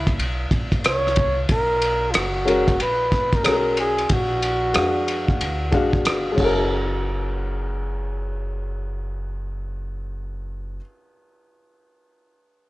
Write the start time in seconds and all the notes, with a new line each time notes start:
Already playing: C#2 E4
0.07 kick, ride
0.19 B1, ride
0.51 A#1, kick, ride
0.72 kick, ride
0.84 C2 C#5, cross-stick, hi-hat pedal, ride
1.07 cross-stick
1.16 kick, ride
1.49 B1 A#4, kick, ride
1.82 ride
2.11 F#1 F4, cross-stick, hi-hat pedal, ride
2.17 F#4
2.45 G#3 C#4 F#4 A#4, ride
2.68 kick, ride
2.80 A#1 B4, ride
3.12 kick, cross-stick, ride
3.33 A#4, kick, ride
3.43 B1 G#3 C#4 F#4 A4, cross-stick, hi-hat pedal, ride
3.53 A#4
3.77 G#4, ride
3.98 ride
4.09 A#1 F#4, kick, ride
4.42 ride
4.73 F2 G#3 D4 F#4 F5, cross-stick, hi-hat pedal, ride
5.08 ride
5.28 kick
5.41 D2, ride
5.71 A#1 G#3 D4 F#4 F5, kick, ride
5.93 kick
6.05 G1, cross-stick, hi-hat pedal, ride
6.32 G#3 C#4
6.38 F#1 F#4, kick, crash
6.44 A#4